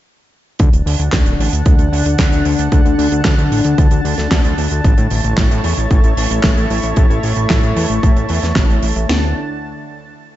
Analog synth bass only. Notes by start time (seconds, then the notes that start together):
0.60 D2
0.73 D1
0.86 D2
1.00 D2
1.13 D2
1.26 D1
1.39 A1
1.53 D2
1.66 D2
1.79 D2
1.92 D2
2.06 D2
2.19 D2
2.32 D2
2.46 D2
2.59 D2
2.72 D2
2.85 D2
2.99 D2
3.12 D2
3.25 D2
3.38 D2
3.52 A1
3.65 D2
3.78 D2
3.91 D2
4.05 D2
4.18 D2
4.31 D2
4.45 D2
4.58 D2
4.71 D2
4.85 A1
4.98 A2
5.11 A1
5.24 A1
5.38 A1
5.51 A2
5.64 E2
5.78 A1
5.91 A1
6.04 A1
6.17 A1
6.31 A1
6.44 A1
6.57 A1
6.70 A1
6.84 A1
6.97 A1
7.10 A1
7.24 A1
7.37 A1
7.50 A1
7.63 A1
7.76 E2
7.90 A1
8.03 A1
8.16 A1
8.30 E2
8.43 E2
8.56 A1
8.70 A1
8.83 A1
8.96 A1
9.09 D2